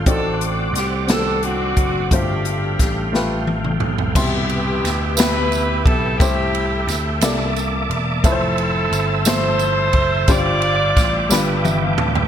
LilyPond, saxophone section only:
\new Staff \with { instrumentName = "Saxophone section" } { \time 6/8 \key c \major \tempo 4. = 59 << { a'8 r8 g'8 a'8 fis'4 | g'2 r4 | g'4. b'4 a'8 | g'4. r4. |
a'4. c''4. | d''2 r4 | } \\ { <c' fis'>4. r8 <c' d'>4 | <c' d'>2 r4 | <b e'>4. <e' g'>4. | e'4. r4. |
<c' e'>4. <e' a'>4. | f'2 r4 | } >> }